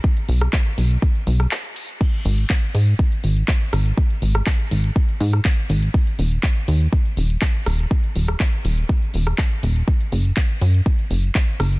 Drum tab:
CC |----------------|x---------------|----------------|----------------|
HH |xxoxxxoxxxoxxxox|xxoxxxoxxxoxxxox|xxo-xxoxxxoxxxox|xxoxxxoxxxoxxxox|
TB |x-xxx-xxx-xxx-xx|x-xxx-xxx-xxx-xx|x-xxx-xxx-xxx-xx|x-xxx-xxx-xxx-xx|
CP |----x-------x---|----x-------x---|----x-------x---|----x-------x---|
SD |---r-------r----|--------------r-|---r-------r----|--------------r-|
BD |o---o---o-------|o---o---o---o---|o---o---o---o---|o---o---o---o---|

CC |----------------|----------------|
HH |xxoxxxoxxxo-xxox|xxoxxxoxxxoxxxox|
TB |x-xxx-xxx-xxx-xx|x-xxx-xxx-xxx-xx|
CP |----x-------x---|----x-------x---|
SD |---r-------r----|--------------r-|
BD |o---o---o---o---|o---o---o---o---|